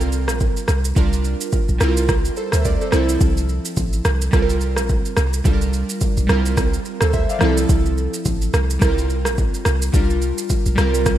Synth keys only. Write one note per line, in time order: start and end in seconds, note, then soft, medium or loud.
0.00 0.93 G3 medium
0.00 0.94 C4 medium
0.00 0.95 F4 medium
0.00 0.97 A#4 medium
0.95 1.77 G3 medium
0.95 1.80 D4 medium
0.95 1.81 F4 medium
0.95 1.81 A#4 medium
1.78 2.89 G3 medium
1.78 2.90 C4 medium
1.78 1.89 E4 medium
1.83 2.37 A#4 medium
1.88 2.94 F4 medium
2.37 2.53 A4 medium
2.37 2.52 C5 medium
2.53 2.65 C5 medium
2.53 2.64 E5 medium
2.65 2.81 A#4 medium
2.65 2.80 D5 medium
2.81 2.94 A4 medium
2.81 3.08 C5 medium
2.90 4.29 F3 medium
2.90 4.30 C4 medium
2.90 4.31 E4 medium
2.95 4.32 A4 medium
4.31 5.42 G3 medium
4.31 5.43 C4 medium
4.31 5.44 F4 medium
4.36 4.42 A4 medium
4.42 5.48 A#4 medium
5.44 6.26 G3 medium
5.44 6.29 D4 medium
5.44 6.30 F4 medium
5.44 5.53 A4 medium
5.53 6.30 A#4 medium
6.27 7.38 G3 medium
6.27 7.39 C4 medium
6.27 6.37 E4 medium
6.32 6.86 A#4 medium
6.36 7.43 F4 medium
7.02 7.13 A4 medium
7.02 7.13 C5 medium
7.13 7.29 C5 medium
7.13 7.29 E5 medium
7.30 7.57 D5 medium
7.30 7.56 F5 medium
7.39 8.78 F3 medium
7.39 8.78 C4 medium
7.39 8.79 E4 medium
7.44 8.80 A4 medium
8.79 9.90 G3 medium
8.79 9.91 C4 medium
8.79 8.90 E4 medium
8.84 9.93 A#4 medium
8.89 9.93 F4 medium
9.92 10.74 G3 medium
9.92 10.78 D4 medium
9.92 10.78 F4 medium
9.92 10.79 A#4 medium
10.75 11.18 G3 medium
10.75 11.18 C4 medium
10.75 11.18 F4 medium
10.80 11.18 A#4 medium